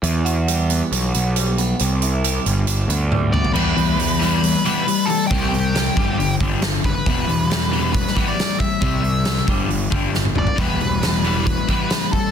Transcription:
<<
  \new Staff \with { instrumentName = "Lead electric guitar" } { \time 4/4 \key e \minor \tempo 4 = 136 r1 | r2. r8 d''8 | b'2 b'4. a'8 | g'8 g'2 r4 b'8~ |
b'2 b'8. d''8. e''8~ | e''4. r2 d''8 | b'2 b'4. a'8 | }
  \new Staff \with { instrumentName = "Clean electric guitar" } { \clef bass \time 4/4 \key e \minor e8 fis'8 g8 b8 fis'8 b8 g8 b8 | c8 e'8 g8 g,8 d'8 b8 g8 b8 | <e g b>8 e8 <e g>8 <e g b>8 <e g>8 <e g b>8 <e g>8 <e g>8 | <c g c'>8 c8 <c g>8 <g, d g>8 <g, d>8 <g, d g>8 <g, d>8 <g, d>8 |
<e g b>8 <e g>8 <e g>8 <e g b>8 <e g>8 <e g b>8 <e g>8 <e g>8 | <c g c'>8 <c g>8 <c g>8 <g, d g>8 <g, d>8 <g, d g>8 <g, d>8 <g, d>8 | <e g b>8 <e g>8 <e g>8 <e g b>8 e8 <e g b>8 e8 <e g>8 | }
  \new Staff \with { instrumentName = "Distorted electric guitar" } { \clef bass \time 4/4 \key e \minor r1 | r1 | <e g b>8 <e g>8 <e g>8 <e g b>8 <e g>8 <e g b>8 <e g>8 <e g>8 | <c g c'>8 <c g>8 <c g>8 <g, d g>8 <g, d>8 <g, d g>8 <g, d>8 <g, d>8 |
<e g b>8 <e g>8 <e g>8 <e g b>8 <e g>8 <e g b>8 <e g>8 <e g>8 | <c g c'>8 <c g>8 <c g>8 <g, d g>8 <g, d>8 <g, d g>8 <g, d>8 <g, d>8 | <e g b>8 <e g>8 <e g>8 <e g b>8 <e g>8 <e g b>8 <e g>8 <e g>8 | }
  \new Staff \with { instrumentName = "Picked electric bass" } { \clef bass \time 4/4 \key e \minor e,2 b,,8 b,,4. | c,4. g,,4 d,4. | e,8 e,2 r4. | c,4. g,,4 g,,4 fis,,16 r16 |
e,,8 e,,2 r4. | c,4. g,,4 g,,4 g,,16 r16 | e,,8 e,,2 r4. | }
  \new DrumStaff \with { instrumentName = "Drums" } \drummode { \time 4/4 hh8 hh8 hh8 hh8 hh8 hh8 hh8 hh8 | hh8 hh8 hh8 hh8 hh8 hh8 tommh8 toml16 tomfh16 | cymc8 hho8 hho8 hho8 hho8 hho8 hho8 hho8 | <hho bd>8 hho8 <hho sn>8 bd8 hho8 <hho bd>8 <hho sn>8 <hho bd>8 |
<hho bd>8 hho8 <hho sn>8 hho8 <hho bd>16 sn16 <hho bd>8 <hho sn>8 <hho bd>8 | <hho bd>8 hho8 <hho sn>16 sn16 <hho bd>8 hho8 <hho bd>8 sn16 tommh16 toml16 tomfh16 | <hho bd>8 hho8 <hho sn>8 hho8 <hho bd>8 <hho bd>8 <hho sn>8 <hho bd>8 | }
>>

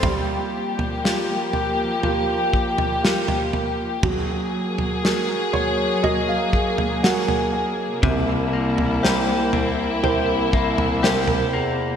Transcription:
<<
  \new Staff \with { instrumentName = "Upright piano" } { \time 4/4 \key g \minor \tempo 4 = 60 << { r1 | r4. des''8 ees''16 f''8. ges''16 aes''16 aes''8 | r1 | } \\ { g4 <f' g' bes'>4 <f' g' bes'>4 <f' g' bes'>4 | ges4 <ges' aes' bes'>4 <ges' aes' bes'>4 <ges' aes' bes'>4 | c4 <e' bes' c''>4 <e' bes' c''>4 <e' bes' c''>4 | } >> }
  \new Staff \with { instrumentName = "Clean electric guitar" } { \time 4/4 \key g \minor r1 | r1 | c8 bes8 g'8 c'8 g'8 bes8 g'8 bes8 | }
  \new Staff \with { instrumentName = "String section" } { \time 4/4 \key g \minor << { <f g'>1 | <ges aes'>1 | <c e'>1 | } \\ { bes1 | bes1~ | bes1 | } >> }
  \new Staff \with { instrumentName = "Bass clarinet" } { \clef bass \time 4/4 \key g \minor r1 | r1 | c,4. c,8 c,4. e,8 | }
  \new DrumStaff \with { instrumentName = "Drums" } \drummode { \time 4/4 <bd tomfh>8. tomfh16 sn8 tomfh8 tomfh8 bd16 tomfh16 sn16 tomfh16 tomfh8 | <bd tomfh>8. tomfh16 sn8 tomfh8 tomfh8 bd16 tomfh16 sn16 tomfh8. | <bd tomfh>8. tomfh16 sn8 tomfh8 tomfh8 bd16 tomfh16 sn16 tomfh8. | }
>>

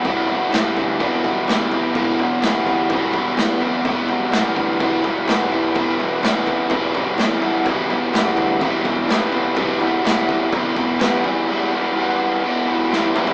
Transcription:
<<
  \new Staff \with { instrumentName = "Overdriven electric guitar" } { \clef bass \time 4/4 \key e \minor \tempo 4 = 126 <e, b, e g b e'>8 <e g b e'>8 <e g b e'>4 <e, b, e g b e'>8 <e g b e'>8 <e g b e'>8 <e g b e'>8 | <e, b, e g b e'>8 <e g b e'>8 <e g b e'>4 <e, b, e g b e'>8 <e g b e'>8 <e g b e'>8 <e g b e'>8 | <e, b, e g b e'>8 <e g b e'>8 <e g b e'>4 <e, b, e g b e'>8 <e g b e'>8 <e g b e'>8 <e g b e'>8 | <e, b, e g b e'>8 <e g b e'>8 <e g b e'>4 <e, b, e g b e'>8 <e g b e'>8 <e g b e'>8 <e g b e'>8 |
<e, b, e g b e'>8 <e g b e'>8 <e g b e'>4 <e, b, e g b e'>8 <e g b e'>8 <e g b e'>8 <e g b e'>8 | <e, b, e g b e'>8 <e g b e'>8 <e g b e'>4 <e, b, e g b e'>8 <e g b e'>8 <e g b e'>8 <e g b e'>8 | <e, b, e g b e'>8 <e g b e'>8 <e g b e'>4 <e, b, e g b e'>8 <e g b e'>8 <e g b e'>8 <e g b e'>8 | }
  \new Staff \with { instrumentName = "Picked electric bass" } { \clef bass \time 4/4 \key e \minor e,,4 e,,8 d,8 e,,8 e,,8 e,,8 e,,8 | e,,8 e,,8 e,,8 e,8 e,,8 e,,8 e,4 | e,,4 e,,8 d,8 e,,8 e,,8 e,,8 e,,8 | e,,8 e,,8 e,,8 e,8 e,,8 e,,8 e,4 |
e,,4 e,,8 d,8 e,,8 e,,8 e,,8 e,,8 | e,,8 e,,8 e,,8 e,8 e,,8 e,,8 e,4 | r1 | }
  \new DrumStaff \with { instrumentName = "Drums" } \drummode { \time 4/4 <bd tomfh>8 tomfh8 <sn tomfh>8 <bd tomfh>8 <bd tomfh>8 <bd tomfh>8 <sn tomfh>8 tomfh8 | <bd tomfh>8 tomfh8 <sn tomfh>8 <bd tomfh>8 <bd tomfh>8 <bd tomfh>8 <sn tomfh>8 tomfh8 | <bd tomfh>8 tomfh8 <sn tomfh>8 <bd tomfh>8 <bd tomfh>8 <bd tomfh>8 <sn tomfh>8 tomfh8 | <bd tomfh>8 tomfh8 <sn tomfh>8 <bd tomfh>8 <bd tomfh>8 <bd tomfh>8 <sn tomfh>8 tomfh8 |
<bd tomfh>8 tomfh8 <sn tomfh>8 <bd tomfh>8 <bd tomfh>8 <bd tomfh>8 <sn tomfh>8 tomfh8 | <bd tomfh>8 tomfh8 <sn tomfh>8 <bd tomfh>8 <bd tomfh>8 <bd tomfh>8 <sn tomfh>8 tomfh8 | r4 r4 r4 sn8 toml16 tomfh16 | }
>>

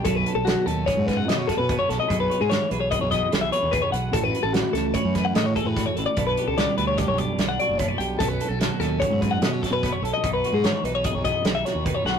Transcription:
<<
  \new Staff \with { instrumentName = "Clean electric guitar" } { \time 5/4 \key b \mixolydian \tempo 4 = 147 a'16 b'8 a'16 fis'8 a'8 cis''8 b'16 fis''16 dis''16 cis''16 a'16 b'8 cis''16 a'16 dis''16~ | dis''16 b'8 gis'16 cis''8 b'16 cis''16 dis''16 cis''16 dis''8 r16 e''16 cis''8 b'16 cis''16 fis''8 | a'16 b'8 a'16 fis'8 a'8 cis''8 b'16 fis''16 dis''16 cis''16 a'16 b'8 cis''16 a'16 d''16~ | d''16 b'8 a'16 d''8 b'16 cis''16 d''16 cis''16 d''8 r16 fis''16 d''8 cis''16 d''16 g''8 |
a'16 b'8 a'16 fis'8 a'8 cis''8 b'16 fis''16 dis''16 cis''16 a'16 b'8 cis''16 a'16 dis''16~ | dis''16 b'8 gis'16 cis''8 b'16 cis''16 dis''16 cis''16 dis''8 r16 e''16 cis''8 b'16 cis''16 fis''8 | }
  \new Staff \with { instrumentName = "Clean electric guitar" } { \time 5/4 \key b \mixolydian << { <fis cis' gis'>8 a'4 cis'8 gis'4 cis'8 gis'8 cis'8 fis'16 a'16 | gis'8 cis''4 gis'8 b'4 gis'8 b'8 gis'8 b'8 | fis'8 b'4 fis'8 b'4 fis'8 gis'8 fis'8 b'8 | d'8 g'4 d'8 g'4 d'8 fis'8 d'8 g'8 |
cis'8 a'4 cis'8 fis'16 gis'8. cis'8 fis'16 gis'16 cis'8 a'8 | dis'8 fis'4 dis'8 gis'4 dis'8 fis'8 dis'8 fis'8 | } \\ { b,4 fis4. fis,4. b,4 | b,4 e4. b,4. b,4 | a,4 e4. e4. a,4 | b,4 g4. b,4. b,4 |
b,4 fis4. fis,4. b,4 | b,4 e4. b,4. b,4 | } >> }
  \new Staff \with { instrumentName = "Fingered electric bass" } { \clef bass \time 5/4 \key b \mixolydian b,,8 r16 b,,8 r16 dis,8 r16 gis,8. b,8 r16 b,8 r16 b,,16 r16 | b,,8 r16 gis,8 r16 b,,8. b,,8 r16 b,,8 r16 dis,8 r16 b,,8 | a,,8 r16 a,,8 r16 cis,8 r16 fis,8. a,8 r16 a,8 r16 a,,16 r16 | b,,8 r16 cis,8 r16 d,8. b,,8 r16 b,,8 r16 fis,,8 r16 b,,8 |
b,,8 r16 b,,8 r16 dis,8 r16 gis,8. b,8 r16 b,8 r16 b,,16 r16 | b,,8 r16 gis,8 r16 b,,8. b,,8 r16 b,,8 r16 dis,8 r16 b,,8 | }
  \new DrumStaff \with { instrumentName = "Drums" } \drummode { \time 5/4 <hh bd>8 hh8 <hh sn>8 hh8 <hh bd sn>8 <hh bd sn>8 <hh sn>8 <hh bd sn>8 <hh bd>8 <hh sn>8 | <hh bd>8 hh8 <hh sn>8 hh8 <hh bd>8 <hh bd sn>8 <hh sn>8 hh8 <hh bd>8 hh8 | <hh bd>8 hh8 <hh sn>8 <hh sn>8 <hh bd>8 <hh bd sn>8 <hh sn>8 <hh bd>8 <hh bd sn>8 hh8 | <hh bd>8 hh8 <hh sn>8 hh8 <hh bd sn>8 <hh bd>8 <hh sn>8 hh8 <hh bd>8 hh8 |
<hh bd>8 hh8 <hh sn>8 <hh sn>8 <hh bd>8 <hh bd>8 <hh sn>8 <hh bd sn>8 <hh bd sn>8 hh8 | <hh bd>8 hh8 <hh sn>8 hh8 <hh bd>8 <hh bd>8 <hh sn>8 <hh sn>8 <hh bd>8 sn8 | }
>>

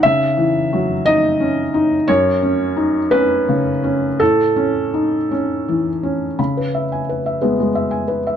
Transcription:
\new Staff \with { instrumentName = "Felt piano" } { \time 6/8 \key cis \minor \tempo 4. = 58 << { e''4. dis''4. | cis''4. b'4. | a'4. r4. | b''16 b'16 e''16 gis''16 b'16 e''16 b'16 gis16 e''16 gis''16 b'16 e''16 | } \\ { <cis dis'>8 e8 fis8 dis'8 cis'8 dis'8 | fis,8 cis'8 dis'8 cis'8 cis8 cis'8 | a,8 cis'8 dis'8 cis'8 e8 cis'8 | cis4. <gis b>4. | } >> }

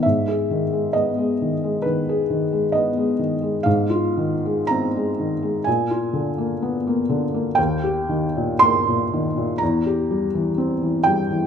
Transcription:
<<
  \new Staff \with { instrumentName = "Felt piano" } { \time 4/4 \key gis \minor \tempo 4 = 63 e''4 dis''4 b'4 dis''8 r8 | \key ees \major f''4 bes''4 aes''2 | g''4 c'''4 bes''4. g''8 | }
  \new Staff \with { instrumentName = "Felt piano" } { \clef bass \time 4/4 \key gis \minor gis,16 gis'16 dis16 gis16 b16 gis16 dis16 gis16 dis16 gis'16 dis16 gis16 b16 gis16 dis16 gis16 | \key ees \major aes,16 f'16 ees16 aes16 c'16 aes16 ees16 aes16 bes,16 f'16 d16 bes16 ces'16 bes16 d16 bes16 | ees,16 g'16 ees16 bes,16 bes16 bes,16 ees16 bes,16 e,16 g'16 g16 e16 c'16 e16 g16 e16 | }
>>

